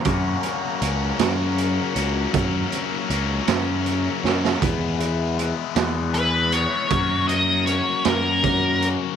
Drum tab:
HH |x-x-x-x-x-x-|x-x-x-x-x---|x-x-x-x-x-x-|x-x-x-x-x-x-|
SD |------o-----|------o---oo|------o-----|------o-----|
BD |o-----------|o-----------|o-----------|o-------o---|